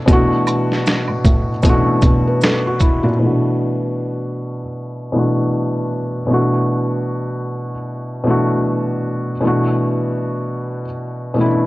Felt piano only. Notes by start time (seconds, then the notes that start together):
0.06 B2 E3 A3
0.11 D4 F#4
1.63 B2 E3 A3
1.68 C#4 F#4
1.74 D4
2.27 B4
2.42 A4
2.67 F#4
2.81 E4
3.03 F#4
3.19 B2 E3 A3
3.24 D4 F#4
5.12 B2 E3 A3
5.17 D4 F#4
6.27 B2 E3 A3
6.32 D4 F#4
8.24 B2 E3 A3
8.29 D4 F#4
9.41 B2 E3 A3
9.46 D4 F#4
11.34 B2 E3 A3
11.39 C#4 E4
11.46 D4